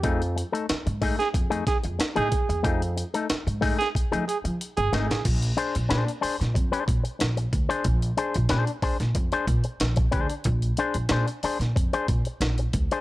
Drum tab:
CC |----------------|----------------|x---------------|----------------|
HH |xxxxxxoxxxxxxxxx|xxxxxxoxxxxxxxxx|xxxxxxoxxxxxxxxx|xxxxxxoxxxxxxxxx|
SD |----o--o--o-o---|----o--o------oo|----o--o----o---|----o--o----o---|
BD |o-----o-o-o---o-|o-----o-o-------|o-------o-o---o-|o-----o-o-o--oo-|

CC |----------------|
HH |xxxxxxoxxxxxxxxx|
SD |----o--o----o---|
BD |o-------o-o---o-|